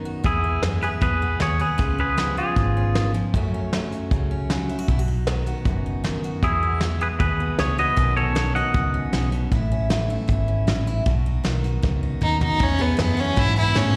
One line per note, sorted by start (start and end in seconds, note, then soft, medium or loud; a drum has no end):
0.00 0.23 F#2 medium
0.00 0.22 D#3 medium
0.00 0.23 B3 medium
0.00 0.23 D#4 medium
0.05 0.22 F#4 medium
0.24 0.56 E2 medium
0.24 0.44 B3 medium
0.24 0.61 E4 medium
0.24 0.61 G#4 medium
0.24 kick loud
0.24 closed hi-hat medium
0.44 1.21 B3 medium
0.63 0.96 F#2 medium
0.63 1.40 E3 medium
0.63 1.77 G#3 medium
0.63 snare loud
0.63 closed hi-hat medium
0.82 1.58 G#4 medium
0.82 0.89 G#4 medium
0.82 0.88 B4 medium
0.82 closed hi-hat medium
1.01 1.35 E2 medium
1.01 1.41 B2 medium
1.01 1.38 G#4 medium
1.01 1.42 B4 medium
1.01 kick loud
1.01 closed hi-hat medium
1.22 1.98 B3 medium
1.40 1.74 D#2 medium
1.40 1.60 G#4 medium
1.40 1.61 C#5 medium
1.40 snare loud
1.40 closed hi-hat medium
1.60 1.77 G#4 medium
1.60 1.97 G#4 medium
1.60 1.99 B4 medium
1.60 closed hi-hat medium
1.78 2.43 C#2 medium
1.78 2.17 C#3 medium
1.78 2.36 F4 medium
1.78 kick loud
1.78 closed hi-hat medium
1.98 2.76 C#4 medium
1.98 2.36 G#4 medium
1.98 2.35 B4 medium
2.17 2.95 F3 medium
2.17 3.32 B3 medium
2.17 snare loud
2.17 closed hi-hat medium
2.37 3.32 F4 medium
2.37 3.11 F4 medium
2.37 3.11 G#4 medium
2.37 closed hi-hat medium
2.56 3.20 G#1 medium
2.56 3.32 G#2 medium
2.56 kick loud
2.56 closed hi-hat medium
2.77 3.32 C#4 medium
2.95 3.14 D#3 medium
2.95 snare loud
2.95 closed hi-hat medium
3.14 3.34 F3 medium
3.14 closed hi-hat medium
3.34 3.98 F#2 medium
3.34 4.86 F#2 medium
3.34 3.73 F#3 medium
3.34 3.72 A3 medium
3.34 3.53 C#4 soft
3.34 3.92 F#4 medium
3.34 kick loud
3.34 closed hi-hat medium
3.54 4.30 C#4 medium
3.73 4.50 F#3 medium
3.73 4.87 A3 medium
3.73 snare loud
3.73 closed hi-hat medium
3.92 4.69 F#4 medium
3.92 closed hi-hat medium
4.11 4.75 C#2 medium
4.11 4.50 C#3 medium
4.11 kick loud
4.11 closed hi-hat medium
4.31 4.86 C#4 medium
4.50 4.92 F#3 medium
4.50 snare loud
4.50 closed hi-hat medium
4.69 4.79 E4 medium
4.69 closed hi-hat medium
4.79 4.88 F#4 medium
4.88 5.52 B1 medium
4.88 5.27 B2 medium
4.88 4.99 E4 medium
4.88 kick loud
4.88 closed hi-hat medium
4.99 5.46 F#4 medium
5.08 5.85 D#4 medium
5.27 6.03 D#3 medium
5.27 6.63 B3 medium
5.27 snare loud
5.27 closed hi-hat medium
5.46 6.24 F#4 medium
5.46 closed hi-hat medium
5.65 6.29 F#1 medium
5.65 6.41 F#2 medium
5.65 kick loud
5.65 closed hi-hat medium
5.86 6.41 D#4 medium
6.04 6.40 D#3 medium
6.04 snare loud
6.04 closed hi-hat medium
6.23 6.43 F#4 medium
6.23 closed hi-hat medium
6.43 7.06 E2 medium
6.43 7.97 E2 medium
6.43 6.79 E4 medium
6.43 7.01 F#4 medium
6.43 6.80 G#4 medium
6.43 kick loud
6.43 closed hi-hat medium
6.63 7.39 B3 medium
6.81 7.96 G#3 medium
6.81 snare loud
6.81 closed hi-hat medium
7.00 7.77 F#4 medium
7.00 7.07 G#4 medium
7.00 7.07 B4 medium
7.00 closed hi-hat medium
7.19 7.53 D#2 medium
7.19 7.59 B2 medium
7.19 7.56 G#4 medium
7.19 7.59 B4 medium
7.19 kick loud
7.19 closed hi-hat medium
7.40 7.97 B3 medium
7.59 7.92 C#2 medium
7.59 7.95 E3 medium
7.59 7.77 G#4 medium
7.59 7.79 C#5 medium
7.59 snare loud
7.59 closed hi-hat medium
7.78 7.95 F#4 medium
7.78 8.15 B4 medium
7.78 8.15 D#5 medium
7.78 closed hi-hat medium
7.96 8.61 B1 medium
7.96 8.36 B2 medium
7.96 8.34 D#3 medium
7.96 8.35 B3 medium
7.96 8.17 C#4 medium
7.96 8.55 F#4 medium
7.96 kick loud
7.96 closed hi-hat medium
8.17 8.93 C#4 medium
8.17 8.53 A4 medium
8.17 8.55 C#5 loud
8.35 9.49 D#3 medium
8.35 9.50 B3 medium
8.35 snare loud
8.35 closed hi-hat medium
8.55 9.50 F#4 medium
8.55 9.29 D#5 medium
8.55 9.28 F#5 medium
8.55 closed hi-hat medium
8.74 9.07 C#2 medium
8.74 9.49 F#2 medium
8.74 kick loud
8.74 closed hi-hat medium
8.94 9.49 C#4 medium
9.13 9.46 B1 medium
9.13 9.32 C#3 medium
9.13 snare loud
9.13 closed hi-hat medium
9.32 9.51 B2 medium
9.32 closed hi-hat medium
9.52 10.15 A1 medium
9.52 10.29 A2 medium
9.52 10.09 E4 medium
9.52 kick loud
9.52 closed hi-hat medium
9.72 10.47 C#4 medium
9.90 10.66 E3 medium
9.90 11.04 A3 medium
9.90 snare loud
9.90 closed hi-hat medium
10.09 10.86 E4 medium
10.09 closed hi-hat medium
10.28 10.62 G#1 medium
10.28 11.05 E2 medium
10.28 kick loud
10.28 closed hi-hat medium
10.48 11.04 C#4 medium
10.67 11.00 A1 medium
10.67 11.04 E3 medium
10.67 snare loud
10.67 closed hi-hat medium
10.87 11.06 E4 medium
10.87 closed hi-hat medium
11.06 11.38 B1 medium
11.06 11.45 B2 medium
11.06 11.63 F#4 medium
11.06 kick loud
11.06 closed hi-hat medium
11.26 12.02 D#4 medium
11.44 11.78 B1 medium
11.44 12.20 D#3 medium
11.44 12.58 B3 medium
11.44 snare loud
11.44 closed hi-hat medium
11.64 12.40 F#4 medium
11.64 closed hi-hat medium
11.83 12.16 C#2 medium
11.83 12.58 F#2 medium
11.83 kick loud
11.83 snare medium
12.03 12.58 D#4 medium
12.21 12.54 D#2 medium
12.21 12.58 D#3 medium
12.21 12.41 D#4 medium
12.21 mid tom medium
12.41 12.65 D#4 medium
12.41 12.58 F#4 medium
12.41 floor tom medium
12.59 13.75 E2 medium
12.59 12.98 E2 medium
12.59 12.83 C#4 loud
12.59 kick loud
12.59 ride medium
12.79 13.00 B3 medium
12.79 13.96 G#4 medium
12.79 ride medium
12.97 13.36 F#2 medium
12.97 13.96 E3 medium
12.97 snare loud
12.97 ride medium
13.01 13.21 B3 medium
13.17 13.55 B3 medium
13.17 13.41 C#4 medium
13.17 ride medium
13.36 13.75 G#2 medium
13.36 13.95 B2 medium
13.36 13.57 E4 loud
13.36 kick loud
13.36 ride medium
13.56 13.96 B3 medium
13.56 13.78 E4 loud
13.56 ride medium
13.75 13.95 G#2 medium
13.75 13.96 A2 loud
13.75 13.96 C#4 loud
13.75 snare loud
13.75 ride medium